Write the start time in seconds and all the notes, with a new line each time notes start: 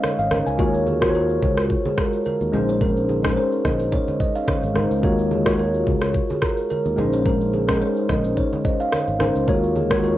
Already playing: G#3 C#4 D#4 C5
0.03 C#5, cross-stick, high conga, shaker
0.19 G#1 F5, shaker
0.31 A#4, cross-stick, high conga, low conga, shaker
0.46 C#2 G#5, shaker
0.58 D#2 G#3 F4 F#4 A#4 C#5, kick, low conga, shaker
0.74 shaker
0.87 G#4, high conga, shaker
1.01 G#3 F4 F#4 A#4 C5, kick, cross-stick, shaker
1.10 C#5
1.15 A#4, shaker
1.30 shaker
1.42 C#2, kick, high conga, low conga, shaker
1.57 cross-stick, shaker
1.70 kick, shaker
1.85 G#4, high conga, shaker
1.98 A#4, kick, cross-stick, shaker
2.13 shaker
2.26 A#4, high conga, shaker
2.41 D#2, shaker
2.52 A#1 G#3 C#4 D#4 G#4 C5, high conga, low conga, shaker
2.69 C#5, shaker
2.81 A#4, kick, low conga, shaker
2.97 shaker
3.09 G#4, high conga, shaker
3.23 G#3 C#4 D#4 A#4 C5, kick, cross-stick, shaker
3.37 C#5, shaker
3.52 shaker
3.65 A#1 D#5, kick, cross-stick, high conga, low conga, shaker
3.80 shaker
3.92 C#5, kick, low conga, shaker
4.08 high conga, shaker
4.20 D#5, kick, shaker
4.35 F5, shaker
4.48 C#5, kick, cross-stick, high conga, shaker
4.63 G#1, shaker
4.74 G#3 C#4 D#4 A#4 C5, cross-stick, high conga, low conga, shaker
4.91 C#2, shaker
5.02 D#2 G#3 F4 F#4 A#4 C#5, kick, low conga, shaker
5.19 shaker
5.31 G#4, high conga, shaker
5.45 G#3 F4 F#4 A#4 C#5, kick, cross-stick, shaker
5.59 A#4, shaker
5.74 shaker
5.86 C#2, kick, high conga, low conga, shaker
6.01 cross-stick, shaker
6.14 kick, shaker
6.30 G#4, high conga, shaker
6.42 A#4, kick, cross-stick, shaker
6.57 shaker
6.70 A#4, high conga, shaker
6.85 D#2, shaker
6.96 A#1 G#3 C#4 D#4 G#4 C5, high conga, low conga, shaker
7.13 C#5, shaker
7.25 A#4, kick, low conga, shaker
7.41 shaker
7.53 G#4, high conga, shaker
7.67 G#3 C#4 D#4 A#4 C5, kick, cross-stick, shaker
7.81 C#5, shaker
7.96 shaker
8.09 A#1 D#5, kick, cross-stick, high conga, low conga, shaker
8.24 shaker
8.37 C#5, kick, shaker
8.52 high conga, shaker
8.64 D#5, kick, shaker
8.80 F5, shaker
8.92 C#5, cross-stick, high conga, shaker
9.08 G#1, shaker
9.19 G#3 C#4 D#4 A#4 C5, cross-stick, high conga, low conga, shaker
9.35 C#2, shaker
9.46 D#2 G#3 F4 F#4 A#4 C#5, kick, low conga, shaker
9.63 shaker
9.75 G#4, high conga, shaker
9.89 G#3 F4 F#4 A#4 C#5, kick, cross-stick, shaker
10.03 A#4, shaker